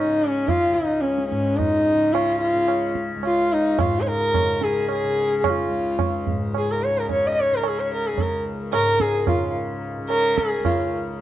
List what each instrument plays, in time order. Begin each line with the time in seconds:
Already playing: tanpura C#2 G#2 C#3, sarangi D#4
0.05 tanpura C#3
0.28 sarangi C#4
0.48 sarangi F4, tabla tin, tabla ge
0.70 tanpura C#2
0.74 sarangi D#4
1.01 sarangi C#4, tabla te
1.18 tabla te
1.29 tanpura G#2, sarangi C#4, tabla ke
1.45 tabla te
1.57 sarangi D#4, tabla tin, tabla ge
1.93 tanpura C#3
2.13 sarangi F4, tabla na
2.41 sarangi F4
2.56 tanpura C#3
2.68 tabla na
2.95 tabla ke
3.16 tanpura C#2
3.23 sarangi F4, tabla na
3.53 sarangi D#4
3.79 tanpura G#2, sarangi F4, tabla na, tabla ge
4.01 sarangi C#5
4.07 sarangi A#4, tabla te
4.34 tabla na, tabla ge
4.43 tanpura C#3
4.61 sarangi G#4, tabla te
4.89 sarangi G#4, tabla na
5.04 tanpura C#3
5.40 sarangi G#4, tabla na, tabla ge
5.49 sarangi F4
5.67 tanpura C#2
5.99 tabla na, tabla ge
6.27 tanpura G#2, tabla ge
6.54 sarangi G#4, tabla na
6.72 sarangi A#4
6.83 sarangi C#5
6.91 tanpura C#3
6.98 sarangi A#4
7.09 sarangi C#5, tabla tin, tabla ge
7.27 sarangi D#5
7.34 sarangi D#5
7.40 sarangi C#5
7.52 tanpura C#3, sarangi A#4
7.63 tabla na
7.68 sarangi G#4
7.80 sarangi C#5
7.94 sarangi A#4
8.07 sarangi G#4
8.13 tanpura C#2
8.18 sarangi A#4, tabla tin, tabla ge
8.73 tanpura G#2, sarangi A#4, tabla na
9.00 sarangi G#4, tabla ke
9.27 sarangi F4, tabla na, tabla ge
9.35 tanpura C#3
9.99 tanpura C#3
10.09 sarangi A#4, tabla na
10.38 sarangi G#4, tabla ke
10.59 tanpura C#2
10.65 sarangi F4, tabla na, tabla ge